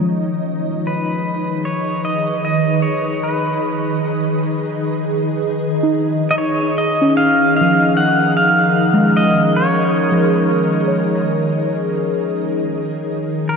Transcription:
Already playing: D#3 G#3 D#4 C#5 D#5
0.01 F3
0.40 G#4 B4
0.87 B4
1.65 C#5
2.05 D#5
2.45 D#5
2.82 C#5
3.23 B4
5.83 D#4
6.31 D#5
6.38 C#5
6.78 D#5
7.01 C#4
7.17 A#4 F5
7.57 F5
7.61 F3
7.97 F#5
8.37 F5
8.93 G#3
9.17 D#5
9.56 C#5
10.12 F3
10.87 C#5
13.20 F#5
13.30 B3
13.49 A#4

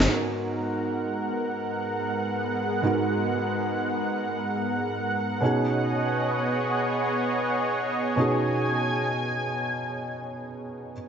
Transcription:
Already playing: D#4
0.00 snare, high conga
0.06 G#2 G#3 B3 D#4 F#4 A#4 F#5
0.10 A#4
2.82 G#2 B3 D#4 F#4
2.86 A#4
5.41 B2 B3 C#4 D#4 F#4 G#4 C#5 D#5
5.45 G#4
8.16 B2 C#4 D#4 F#4 G#5
8.20 G#4

